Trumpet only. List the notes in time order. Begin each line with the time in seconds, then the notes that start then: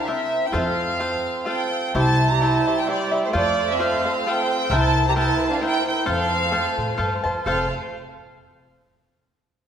0.00 D4
0.12 C4
0.47 E4
0.58 C4
1.49 C4
1.96 E4
2.32 G4
2.43 E4
2.81 E4
2.91 G3
3.26 A3
3.36 A3
3.72 C4
3.83 C4
4.28 C4
4.74 E4
5.08 G4
5.16 E4
5.51 D4
5.62 E4
5.86 E4
6.07 C4
7.47 C4